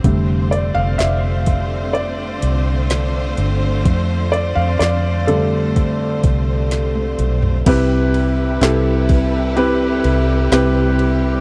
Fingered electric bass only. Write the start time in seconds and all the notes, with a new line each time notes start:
0.04 F1
0.76 F1
1.00 F1
2.43 C2
3.38 G1
3.85 F2
4.57 F2
4.80 F2
6.24 C2
7.19 B1
7.66 C2
8.62 C2
10.05 C2
10.52 C2